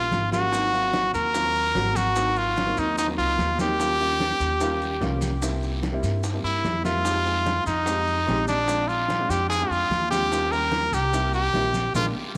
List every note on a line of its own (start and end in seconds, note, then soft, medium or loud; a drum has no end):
0.00 0.11 A#1 medium
0.00 0.17 G3 medium
0.00 0.17 A#3 medium
0.00 0.17 C#4 medium
0.00 0.18 F4 medium
0.00 0.30 F4 medium
0.11 1.08 G#1 medium
0.11 high bongo soft
0.11 low bongo medium
0.11 high conga medium
0.11 short guiro medium
0.11 maracas soft
0.31 0.46 G3 medium
0.31 0.47 A#3 medium
0.31 0.47 C#4 medium
0.31 0.47 F4 medium
0.31 1.10 F#4 medium
0.31 high conga medium
0.31 short guiro medium
0.31 maracas medium
0.52 0.67 F#3 medium
0.52 0.67 A#3 medium
0.52 0.68 C4 medium
0.52 0.68 D#4 medium
0.52 high bongo medium
0.52 long guiro medium
0.52 maracas medium
0.72 1.16 F#3 medium
0.72 1.16 A#3 medium
0.72 1.17 C4 medium
0.72 1.17 F5 medium
0.72 high bongo soft
0.72 high conga soft
0.72 maracas soft
0.93 high bongo soft
0.93 high conga medium
0.93 short guiro medium
0.93 maracas soft
1.14 1.71 D#2 medium
1.14 1.98 A#4 loud
1.14 high bongo soft
1.14 high conga soft
1.14 short guiro medium
1.14 maracas medium
1.34 1.63 F#3 medium
1.34 1.63 A#3 medium
1.34 1.64 C4 medium
1.34 1.64 F4 medium
1.34 high bongo medium
1.34 high conga soft
1.34 long guiro medium
1.34 maracas medium
1.55 high conga soft
1.55 maracas soft
1.75 2.71 G#1 medium
1.75 2.04 F#3 medium
1.75 2.04 A#3 medium
1.75 2.04 C4 medium
1.75 2.05 F#4 loud
1.75 high bongo soft
1.75 low bongo medium
1.75 high conga medium
1.75 short guiro medium
1.75 maracas soft
1.95 2.39 F#4 loud
1.95 high conga medium
1.95 short guiro medium
1.95 maracas medium
2.16 2.52 F#3 medium
2.16 2.52 A#3 medium
2.16 2.52 C4 medium
2.16 2.53 D#4 medium
2.16 high bongo medium
2.16 high conga soft
2.16 long guiro medium
2.16 maracas medium
2.36 2.80 F4 medium
2.36 high bongo soft
2.36 high conga soft
2.36 maracas soft
2.56 high bongo medium
2.56 high conga medium
2.56 short guiro medium
2.56 maracas soft
2.66 2.95 F#3 medium
2.66 2.96 A#3 medium
2.66 2.96 C4 medium
2.66 2.96 D#4 medium
2.77 3.15 D#2 medium
2.77 2.98 D#4 medium
2.77 high bongo soft
2.77 high conga soft
2.77 short guiro medium
2.77 maracas medium
2.98 3.07 D#4 medium
2.98 high bongo medium
2.98 high conga soft
2.98 long guiro medium
2.98 maracas medium
3.07 3.44 F#3 medium
3.07 3.44 A#3 medium
3.07 3.44 C4 medium
3.07 3.45 D#4 medium
3.18 3.37 C#2 medium
3.18 3.56 F4 medium
3.18 high conga soft
3.18 maracas soft
3.38 4.34 D#2 medium
3.38 high bongo soft
3.38 low bongo medium
3.38 high conga medium
3.38 short guiro medium
3.38 maracas soft
3.58 3.73 F#3 medium
3.58 3.73 A#3 medium
3.58 3.74 C4 medium
3.58 3.74 D#4 medium
3.58 5.19 G4 loud
3.58 high conga medium
3.58 short guiro medium
3.58 maracas medium
3.79 3.94 G3 medium
3.79 3.94 A#3 medium
3.79 3.94 C#4 medium
3.79 3.95 F4 medium
3.79 high bongo medium
3.79 high conga soft
3.79 long guiro medium
3.79 maracas medium
4.00 4.43 G3 medium
4.00 4.43 A#3 medium
4.00 4.43 C#4 medium
4.00 4.43 F4 medium
4.00 high bongo soft
4.00 high conga soft
4.00 maracas soft
4.20 high bongo medium
4.20 high conga medium
4.20 short guiro medium
4.20 maracas soft
4.40 4.98 D#2 medium
4.40 high bongo soft
4.40 high conga soft
4.40 short guiro medium
4.40 maracas medium
4.60 4.89 G3 medium
4.60 4.90 A#3 medium
4.60 4.90 C#4 medium
4.60 4.90 F4 loud
4.60 high bongo medium
4.60 high conga soft
4.60 long guiro medium
4.60 maracas medium
4.81 high conga soft
4.81 maracas soft
5.01 5.97 C2 medium
5.01 5.30 G3 medium
5.01 5.30 A#3 medium
5.01 5.30 C#4 medium
5.01 5.31 F4 loud
5.01 high bongo soft
5.01 low bongo medium
5.01 high conga medium
5.01 short guiro medium
5.01 maracas soft
5.21 high conga medium
5.21 short guiro medium
5.21 maracas medium
5.41 5.78 G3 medium
5.41 5.78 A#3 medium
5.41 5.79 C4 medium
5.41 5.79 E4 medium
5.41 high bongo medium
5.41 high conga soft
5.41 long guiro medium
5.41 maracas medium
5.63 high bongo soft
5.63 high conga soft
5.63 maracas soft
5.83 high bongo medium
5.83 high conga medium
5.83 short guiro medium
5.83 maracas soft
5.92 6.22 G3 medium
5.92 6.22 A#3 medium
5.92 6.22 C4 medium
5.92 6.23 E4 medium
6.03 6.41 G2 medium
6.03 high bongo soft
6.03 high conga soft
6.03 short guiro medium
6.03 maracas medium
6.23 high bongo medium
6.23 high conga soft
6.23 long guiro medium
6.23 maracas medium
6.32 6.69 G3 medium
6.32 6.70 A#3 medium
6.32 6.70 C4 medium
6.32 6.70 E4 medium
6.44 6.63 G2 medium
6.44 6.82 E4 medium
6.44 high conga soft
6.44 maracas soft
6.64 7.60 F2 medium
6.64 high bongo soft
6.64 low bongo medium
6.64 high conga medium
6.64 short guiro medium
6.64 maracas soft
6.84 6.99 G3 medium
6.84 6.99 A#3 medium
6.84 6.99 C4 medium
6.84 7.00 E4 medium
6.84 7.63 F4 medium
6.84 high bongo medium
6.84 high conga medium
6.84 short guiro medium
6.84 maracas medium
7.04 7.19 G#3 medium
7.04 7.20 C4 medium
7.04 7.20 D#4 medium
7.04 7.20 G4 medium
7.04 high bongo medium
7.04 high conga soft
7.04 long guiro medium
7.04 maracas medium
7.25 7.68 G#3 medium
7.25 7.69 C4 medium
7.25 7.69 D#4 medium
7.25 7.69 G#4 medium
7.25 high bongo soft
7.25 high conga soft
7.25 maracas soft
7.46 high bongo medium
7.46 high conga medium
7.46 short guiro medium
7.46 maracas soft
7.66 8.24 F2 medium
7.66 8.44 D#4 medium
7.66 high bongo soft
7.66 high conga soft
7.66 short guiro medium
7.66 maracas medium
7.85 8.15 G#3 medium
7.85 8.15 C4 medium
7.85 8.16 D#4 medium
7.85 8.16 G4 medium
7.85 high bongo medium
7.85 high conga soft
7.85 long guiro medium
7.85 maracas medium
8.07 high conga soft
8.07 maracas soft
8.27 9.24 A#1 medium
8.27 8.56 G#3 medium
8.27 8.57 C4 medium
8.27 8.57 D#4 medium
8.27 8.57 G4 loud
8.27 high bongo soft
8.27 low bongo medium
8.27 high conga medium
8.27 short guiro medium
8.27 maracas soft
8.48 8.89 D4 medium
8.48 high conga medium
8.48 short guiro medium
8.48 maracas medium
8.68 9.04 G#3 medium
8.68 9.05 C4 medium
8.68 9.05 D4 medium
8.68 9.05 F4 medium
8.68 high bongo medium
8.68 high conga soft
8.68 long guiro medium
8.68 maracas medium
8.88 9.31 F4 medium
8.88 high bongo soft
8.88 high conga soft
8.88 maracas soft
9.08 high bongo medium
9.08 high conga medium
9.08 short guiro medium
9.08 maracas soft
9.20 9.48 G#3 medium
9.20 9.49 C4 medium
9.20 9.49 D4 medium
9.20 9.49 F4 medium
9.29 9.68 F2 medium
9.29 9.49 G4 medium
9.29 high bongo soft
9.29 high conga soft
9.29 short guiro medium
9.29 maracas medium
9.49 9.72 G#4 loud
9.49 high bongo medium
9.49 high conga soft
9.49 long guiro medium
9.49 maracas medium
9.60 9.96 G#3 medium
9.60 9.96 C4 medium
9.60 9.97 D4 medium
9.60 9.97 F4 medium
9.70 9.89 F2 medium
9.70 10.10 F4 loud
9.70 high conga soft
9.70 maracas soft
9.90 10.87 D#2 medium
9.90 high bongo soft
9.90 low bongo medium
9.90 high conga medium
9.90 short guiro medium
9.90 maracas soft
10.11 10.26 G#3 medium
10.11 10.26 C4 medium
10.11 10.26 D4 medium
10.11 10.27 F4 medium
10.11 10.53 G4 loud
10.11 high conga medium
10.11 short guiro medium
10.11 maracas medium
10.32 10.46 G3 medium
10.32 10.47 A#3 medium
10.32 10.47 C#4 medium
10.32 10.47 F4 medium
10.32 high bongo medium
10.32 high conga soft
10.32 long guiro medium
10.32 maracas medium
10.52 10.95 G3 medium
10.52 10.95 A#3 medium
10.52 10.96 C#4 medium
10.52 10.96 F4 medium
10.52 10.95 A#4 loud
10.52 high bongo soft
10.52 high conga soft
10.52 maracas soft
10.72 high bongo medium
10.72 high conga medium
10.72 short guiro medium
10.72 maracas soft
10.92 11.50 C2 medium
10.92 11.34 G4 medium
10.92 high bongo soft
10.92 high conga soft
10.92 short guiro medium
10.92 maracas medium
11.12 11.42 G3 medium
11.12 11.42 A#3 medium
11.12 11.42 C4 medium
11.12 11.43 E4 medium
11.12 high bongo medium
11.12 high conga soft
11.12 long guiro medium
11.12 maracas medium
11.33 11.91 G4 medium
11.33 high conga soft
11.33 maracas soft
11.53 11.92 A#1 medium
11.53 11.83 G3 medium
11.53 11.83 A#3 medium
11.53 11.83 C4 medium
11.53 11.84 E4 medium
11.53 high bongo soft
11.53 low bongo medium
11.53 high conga medium
11.53 short guiro medium
11.53 maracas soft
11.74 high conga medium
11.74 short guiro medium
11.74 maracas medium
11.94 12.10 A#1 medium
11.94 12.08 G#3 medium
11.94 12.08 A#3 medium
11.94 12.09 D4 medium
11.94 12.06 F4 medium
11.94 low bongo medium
11.94 high conga medium
11.94 long guiro loud
11.94 maracas medium